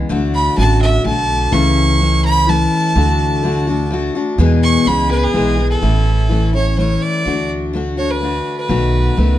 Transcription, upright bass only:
0.10 0.47 D2 medium
0.58 0.98 A1 medium
1.05 1.46 B1 medium
1.52 2.65 C#2 loud
2.96 4.09 D2 medium
4.38 4.76 E2 loud
4.86 5.27 C#2 loud
5.34 5.75 B1 medium
5.82 6.96 A1 medium
7.26 8.39 D2 medium
8.69 9.07 B1 medium
9.17 9.38 C#2 medium

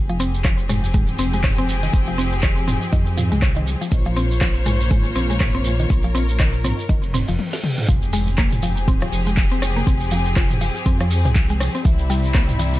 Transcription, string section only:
0.00 3.88 F3 medium
0.00 3.88 C4 medium
0.00 3.88 G4 medium
0.00 3.88 G#4 medium
3.92 7.35 A#3 medium
3.92 7.35 F4 medium
3.92 5.88 C5 medium
3.92 7.35 C#5 loud
5.90 7.37 A#4 medium
7.89 11.81 F3 medium
7.89 12.80 C4 medium
7.89 11.82 G4 medium
7.89 11.82 G#4 loud
11.85 12.80 C3 medium
11.85 12.80 G3 medium
11.85 12.80 E4 loud

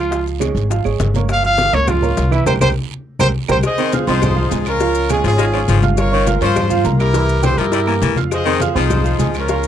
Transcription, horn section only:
3.65 4.08 G#4 medium
3.65 4.07 C5 medium
3.65 3.92 D#5 loud
4.08 4.63 D#4 medium
4.08 4.63 G#4 medium
4.08 4.49 C5 loud
4.66 5.22 C#4 medium
4.66 5.21 F4 medium
4.66 5.07 A#4 loud
5.11 5.23 G#4 loud
5.25 5.80 C#4 medium
5.25 5.80 F4 medium
5.25 5.79 G#4 medium
5.97 6.42 F4 medium
5.97 6.53 A#4 medium
5.97 6.24 C#5 loud
6.42 6.97 F4 medium
6.42 6.82 C5 medium
6.98 7.55 E4 medium
6.98 7.54 G4 medium
6.98 7.40 A#4 loud
7.42 7.56 C5 loud
7.57 8.13 E4 medium
7.57 8.13 G4 medium
7.57 8.16 A#4 medium
8.32 8.75 G#4 medium
8.32 8.74 C5 medium
8.32 8.59 D#5 loud
8.75 9.31 D#4 medium
8.75 9.30 G#4 medium
8.75 9.16 C5 medium
9.36 9.67 C#4 medium
9.36 9.67 F4 medium
9.36 9.67 A#4 medium

